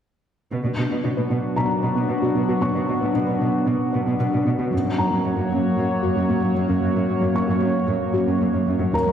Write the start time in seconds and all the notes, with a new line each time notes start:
0.51 B2 F#3 B3 D4 F#4
0.64 B2 D4
0.78 B2 D4
0.90 B2 B3
1.04 B2 D4
1.17 B2 B4
1.30 B2 B3
1.56 B2 B3 A#5
1.83 B2 B4
1.95 B2 B3
2.09 B2 D4
2.22 B2 F#4
2.35 B2 B3
2.48 B2 F#4
2.61 B2 B3 C#5 C#6
2.75 B2 D4
2.88 B2 D4
3.01 B2 B3
3.14 B2 D4
3.27 B2 B4
3.40 B2 B3
3.66 B2 B3
3.93 B2 B4
4.06 B2 B3
4.20 B2 D4
4.32 B2 F#4
4.45 B2 B3
4.58 B2 F#4
4.71 F#2 F#3 A#3 F#4 C#5
4.84 F#2 A#3
4.98 F#2 A#3 A#5
5.11 F#2 F#3
5.24 F#2 A#3
5.37 F#2 F#4
5.50 F#2 F#3
5.76 F#2 F#3
6.02 F#2 F#4
6.16 F#2 F#3
6.29 F#2 A#3
6.42 F#2 C#4
6.55 F#2 F#3
6.68 F#2 C#4
6.81 F#2 F#3
6.95 F#2 A#3
7.08 F#2 A#3
7.21 F#2 F#3
7.34 F#2 A#3 C#6
7.47 F#2 F#4
7.61 F#2 F#3
7.87 F#2 F#3
8.14 F#2 F#4
8.27 F#2 F#3
8.40 F#2 A#3
8.53 F#2 C#4
8.67 F#2 F#3
8.80 F#2 C#4
8.93 D#2 D#3 F#3 A#3 F#4 A#4 D#5 A#5
9.06 D#2 F#3